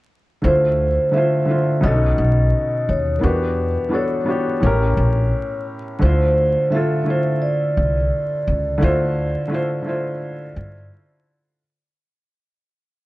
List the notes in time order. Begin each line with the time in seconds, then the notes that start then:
0.42 D2 D3 A3 E4 C5
0.46 F4 C5
1.11 D3 A3 E4 E5
1.16 F4 C5
1.45 D3 A3 E4
1.50 F4 C5
1.81 B1 B2 B3 C#4 D#5
1.85 D4 A4
1.92 D#4
2.18 B1
2.89 D#2 C#5
3.19 E3 B3 D4 A#4
3.23 E2 F#4 G4 B4
3.89 E3 B3 D4
3.93 F#4 A4 C#5
4.24 E3 B3 D4
4.29 F#4 G4
4.60 A1 A2 A3 C#4
4.64 G4 A#4
4.97 A#1
5.99 D2 D3 A3 E4 C5
6.04 F4 C5
6.70 D3 A3 E4 E5
6.74 F4 A4
7.04 D3 A3 E4
7.08 F4 C5
7.42 D5
7.77 C2
8.47 C#2
8.78 D3 A3 E4
8.82 D2 F4 C5
9.48 D3 A3 E4
9.52 F4 C5
9.82 D3 A3 E4
9.87 F4 C5
10.56 G2